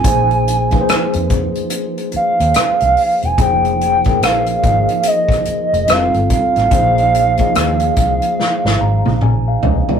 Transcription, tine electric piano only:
X:1
M:4/4
L:1/16
Q:"Swing 16ths" 1/4=72
K:Bbdor
V:1 name="Tine electric piano"
[F,B,EAc]2 z [F,B,EA=Bc]6 z6 z | [F,B,EAc]2 z [F,B,EAB]2 z [F,B,EAe]6 [G,CEFG=A]3 z | [F,B,EAc]2 z [F,B,EAe]6 z b2 a f e2 |]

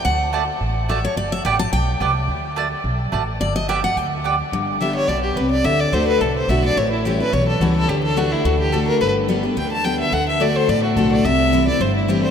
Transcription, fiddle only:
X:1
M:4/4
L:1/8
Q:"Swing" 1/4=214
K:G
V:1 name="Fiddle"
z8 | z8 | z8 | z8 |
z2 e ^c d G B d | e d c B A c e d | ^c E G B c A F A | G A F E F G A _B |
B z3 g a g e | f e d c d F A d | e3 d c E G c |]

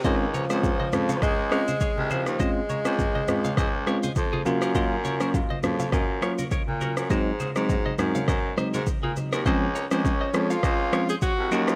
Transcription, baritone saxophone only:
X:1
M:4/4
L:1/16
Q:"Swing 16ths" 1/4=102
K:Db
V:1 name="Baritone saxophone" clef=bass
D,,3 D,,3 F,,2 D,,3 z2 C,,2 E,, | z3 D,,3 D,,2 D,,3 z F,,2 G,,2- | G,,6 F,,2 G,,3 z2 B,,2 G,, | A,,3 A,,3 G,,2 G,,2 z A,, z B,, z E,, |
D,,3 D,,3 F,,2 D,,3 z2 C,, E,,2 |]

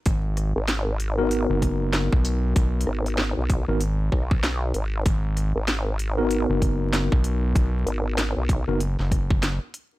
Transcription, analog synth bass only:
X:1
M:4/4
L:1/16
Q:"Swing 16ths" 1/4=96
K:G#m
V:1 name="Analog synth bass" clef=bass
G,,,3 z6 F,,,4 B,,,3 | B,,,2 z4 z G,,,3 z6 | G,,,3 z6 F,,,4 B,,,3 | B,,,2 z4 z F,,,2 F,,,4 z3 |]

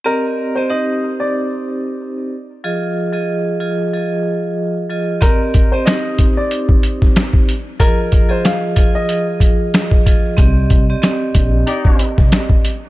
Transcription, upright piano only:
X:1
M:4/4
L:1/16
Q:"Swing 16ths" 1/4=93
K:Cm
V:1 name="Upright piano"
B3 c e3 d2 z6 z | z16 | B3 c e3 d2 z6 z | B3 c f3 e2 z6 z |
z16 |]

